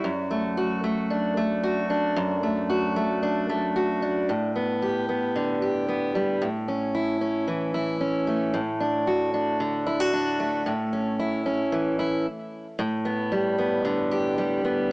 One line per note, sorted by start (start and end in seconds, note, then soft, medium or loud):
0.00 0.57 F#4 medium
0.04 2.15 F#2 medium
0.31 0.83 A3 medium
0.57 1.62 F#4 medium
0.84 1.36 A3 medium
1.10 1.89 D4 medium
1.37 2.42 A3 medium
1.63 2.68 F#4 medium
1.90 3.22 D4 medium
2.16 4.29 F#2 medium
2.43 2.95 A3 medium
2.70 3.75 F#4 medium
2.96 3.48 A3 medium
3.23 4.02 D4 medium
3.49 4.34 A3 medium
3.76 4.34 F#4 medium
4.02 4.55 D4 medium
4.29 6.40 A2 medium
4.56 5.08 B3 soft
4.82 5.61 G4 medium
5.09 5.87 B3 soft
5.36 6.47 D3 medium
5.62 6.47 G4 medium
5.89 6.47 B3 medium
6.15 6.47 G3 soft
6.42 8.52 A2 medium
6.68 7.20 C#4 soft
6.95 7.73 E4 medium
7.21 7.99 C#4 soft
7.48 8.59 E3 medium
7.74 8.59 E4 medium
8.01 8.59 C#4 medium
8.27 10.39 A3 soft
8.54 10.65 A2 medium
8.80 9.33 D4 medium
9.07 9.86 F#4 medium
9.34 10.12 D4 medium
9.60 10.72 D3 medium
9.87 10.00 E4 medium
10.00 10.72 F#4 soft
10.13 10.72 D4 medium
10.40 12.76 A3 soft
10.66 12.26 A2 medium
10.93 11.45 C#4 medium
11.19 11.98 E4 medium
11.46 12.26 C#4 medium
11.72 12.26 E3 medium
11.99 12.26 E4 medium
12.79 14.90 A2 medium
13.05 13.57 B3 medium
13.32 14.37 G3 medium
13.58 14.63 B3 medium
13.85 14.92 D3 medium
14.11 14.92 G4 medium
14.38 14.92 G3 medium
14.65 14.92 B3 medium